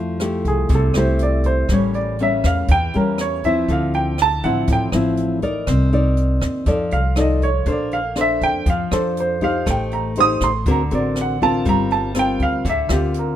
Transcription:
Already playing: F2 F3 A3 E4 G4
0.20 A3 E4 G4, cross-stick, closed hi-hat
0.45 C2 G#4, kick, closed hi-hat
0.69 C2 C3, kick, closed hi-hat
0.75 A4
0.94 C2 A3 E4 G4 C5, cross-stick, closed hi-hat
1.19 D5, closed hi-hat
1.44 C5, kick, closed hi-hat
1.69 A1 A2 G3 A#3 C#4, kick, cross-stick, closed hi-hat
1.73 C#5
1.94 D5, closed hi-hat
2.19 G3 A#3 C#4 E5, closed hi-hat
2.44 E2 F5, kick, cross-stick, closed hi-hat
2.68 E2 E3 G5, kick, closed hi-hat
2.94 E2 G3 A#3 C#4 A#4, closed hi-hat
3.18 C#5, cross-stick, closed hi-hat
3.44 F3 C4 E4 E5, kick, closed hi-hat
3.68 D2 D3 F5, kick, closed hi-hat
3.93 G5, closed hi-hat
4.18 A5, cross-stick, closed hi-hat
4.43 A1 F3 C4 E4 F#5, kick, closed hi-hat
4.67 A1 A2, kick, closed hi-hat
4.73 G5
4.92 A1 F3 C4 E4, cross-stick, closed hi-hat
5.17 closed hi-hat
5.42 D#4 A#4 D5, kick, closed hi-hat
5.67 C2 C4, kick, cross-stick, closed hi-hat
5.92 D#4 A#4 D5, closed hi-hat
6.17 closed hi-hat
6.41 D#2, kick, cross-stick, closed hi-hat
6.66 F2 F3 D#4 A4 D5, kick, closed hi-hat
6.91 C2 F5, closed hi-hat
7.16 D#4 A4 D5, cross-stick, closed hi-hat
7.21 D#5
7.41 C#5, kick, closed hi-hat
7.66 A#1 A#3 D4 A4 C5, kick, closed hi-hat
7.71 D5
7.91 F5, closed hi-hat
8.16 D4 A4 C5, cross-stick, closed hi-hat
8.21 E5
8.41 F2 G5, kick, closed hi-hat
8.66 F2 F3 F5, kick, closed hi-hat
8.91 F2 D4 A4 C5, cross-stick, closed hi-hat
9.17 C5, closed hi-hat
9.41 D#4 G4 C5 F5, kick, closed hi-hat
9.66 A1 A3, kick, cross-stick, closed hi-hat
9.70 G5
9.91 A#5, closed hi-hat
10.16 D#4 G4 C5, closed hi-hat
10.20 D#6
10.41 A1 C6, kick, cross-stick, closed hi-hat
10.66 D2 D3 C4 F#4 A#4, kick, closed hi-hat
10.71 A#5
10.91 A1 C4 F#4 A#4 D5, closed hi-hat
11.16 cross-stick, closed hi-hat
11.21 F#5
11.41 C4 F4 A#4 A5, kick, closed hi-hat
11.65 G1 G3 A#5, kick, closed hi-hat
11.90 A5, closed hi-hat
12.15 C4 F4 A#4, cross-stick, closed hi-hat
12.19 G5
12.40 D2 F5, kick, closed hi-hat
12.65 D2 D3, kick, closed hi-hat
12.69 E5
12.89 D2 C4 F4 G4 A#4, cross-stick, closed hi-hat
13.14 closed hi-hat
13.19 A#4

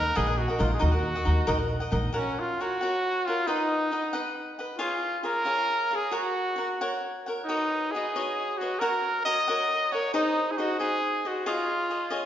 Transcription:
Already playing: D#4 A#4 D#5 F#5
0.15 A#1 D#4 G#4 A#4 D#5 F#5
0.27 A#4 D#5 F#5
0.38 F#4
0.48 A#4 D#5 F#5
0.59 A#1 D#4 F4 A#4 D#5 F#5
0.73 G#4
0.79 D#2 D#4 F#4 A#4 D#5 F#5
0.92 A#4 D#5 F#5
1.15 A#4 D#5 F#5
1.25 D#2 D#4 A#4 D#5 F#5
1.47 A#1 D#4 A#4 D#5 F#5
1.57 A#4 D#5 F#5
1.80 A#4 D#5 F#5
1.91 A#1 D#4 A#4 D#5 F#5
2.13 C#4 F#4 A#4 C#5 F#5
2.40 F4
2.60 F#4 A#4 C#5 F#5
2.81 F#4 A#4 C#5 F#5
3.26 F4 A#4 C#5 F#5
3.47 D#4 B4 D#5 F#5
3.91 D#4 B4 D#5 F#5
4.13 D#4 B4 D#5 F#5
4.59 B4 D#5 F#5
4.78 F4 G#4 C#5 F5
5.23 F4 G#4 A#4 C#5 F5
5.45 F4 G#4 C#5 F5
5.91 G#4 C#5 F5
5.95 G#4
6.11 F#4 A#4 C#5 F#5
6.16 F#4
6.56 F#4 A#4 F#5
6.81 F#4 A#4 C#5 F#5
7.26 A#4 C#5 F#5
7.45 D#4 F#4
7.49 B4 C#5 D#5
7.92 F#4 G#4
7.96 B4 C#5 D#5
8.16 F#4 B4 C#5 D#5
8.58 F#4 D#5
8.62 B4 C#5
8.79 F#4 A#4 C#5 F#5
9.25 F#4 A#4 C#5 D#5 F#5
9.48 F#4 A#4 C#5 F#5
9.92 A#4 C#5 F#5
10.14 D#4 G#4 C5 D#5
10.51 G#4
10.58 D#4 F#4 G#4 C5 D#5
10.79 D#4 G#4 C5 D#5
11.25 F#4 G#4 C5 D#5
11.46 F4 G#4 C#5 D#5
11.90 F4 G#4 C#5 D#5
12.10 F4 G#4 C#5 D#5

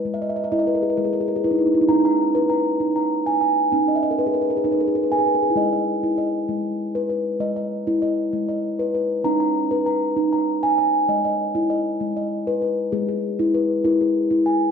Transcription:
Already playing: B4
0.05 G#3
0.14 E5
0.22 D#5
0.29 E5
0.36 D#5
0.44 E5
0.52 E4 D#5
0.59 D#5
0.67 B4
0.75 A#4
0.82 G#4
0.90 B4
0.97 G#3 A#4
1.05 G#4
1.13 A#4
1.20 G#4
1.28 A#4
1.36 G#4
1.44 E4 B4
1.51 D#4
1.58 E4
1.66 D#4
1.74 E4
1.81 D#4
1.89 C#4 D#4 A#5
2.05 A#5
2.35 B4
2.50 A#5
2.80 D#4
2.96 A#5
3.26 G#5
3.41 G#5
3.72 C#4 D#4
3.88 D#5
3.96 E5
4.03 D#5
4.11 A#4
4.19 B4
4.26 G#4
4.34 A#4
4.41 B4
4.50 A#4
4.57 G#4
4.64 D#4 A#4
4.72 B4
4.80 A#4
4.87 G#4
4.95 A#4
5.03 B4
5.12 A#4 G#5
5.19 G#4
5.26 B4
5.34 A#4
5.43 G#4
5.50 E4
5.56 G#3 D#5
5.73 D#5
6.03 E4
6.18 D#5
6.49 G#3
6.95 B4
7.10 B4
7.40 G#3 D#5
7.56 D#5
7.87 E4
8.02 D#5
8.33 G#3
8.49 D#5
8.79 B4
8.95 B4
9.24 C#4 D#4 A#5
9.40 A#5
9.71 B4
9.86 A#5
10.17 D#4
10.33 A#5
10.63 G#5
10.78 G#5
11.08 G#3 D#5
11.25 D#5
11.55 E4
11.70 D#5
12.00 G#3
12.17 D#5
12.47 B4
12.62 B4
12.92 G#3 G#4
13.09 G#4
13.39 E4
13.54 B4
13.84 E4 A#4
14.01 G#4
14.31 E4
14.46 G#5

